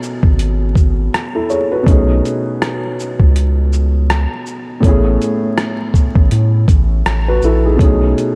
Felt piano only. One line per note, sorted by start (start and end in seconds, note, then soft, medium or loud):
0.00 1.07 B2 medium
0.00 1.08 A3 medium
0.00 1.09 B3 medium
0.00 1.10 C#4 medium
0.00 0.74 E4 medium
0.00 0.74 G#4 medium
1.35 1.50 E4 soft
1.35 1.49 A4 medium
1.50 1.71 G#4 medium
1.50 1.70 C#5 medium
1.72 2.07 F#4 soft
1.72 2.07 B4 medium
1.83 4.77 B2 medium
1.83 4.78 A3 medium
1.83 4.79 C#4 medium
1.89 4.80 D#4 medium
1.89 4.81 G#4 medium
4.80 7.74 A2 medium
4.80 7.75 A3 medium
4.80 7.76 B3 medium
4.85 7.76 C#4 medium
4.85 7.03 E4 medium
4.85 7.04 G#4 medium
7.28 7.43 F#4 medium
7.28 7.42 B4 medium
7.44 7.64 E4 medium
7.44 7.64 A4 medium
7.66 7.81 D#4 soft
7.66 7.83 G#4 medium
7.77 8.35 B2 medium
7.77 8.35 A3 medium
7.77 8.35 C#4 medium
7.82 8.35 D#4 medium
7.82 8.35 G#4 medium